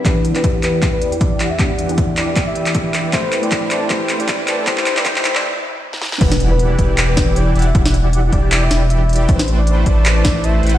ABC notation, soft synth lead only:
X:1
M:4/4
L:1/16
Q:"Swing 16ths" 1/4=156
K:Em
V:1 name="Soft synth lead"
B2 z B2 z B2 z B2 z d2 z e- | e z4 z d2 z e2 z e4 | c3 d2 z d2 c3 d2 z d2 | c3 d c3 d z8 |
B2 z B2 z B2 z B3 d2 z e- | e z4 z d3 e2 z e4 | c2 z d2 z d2 z d3 e2 z f |]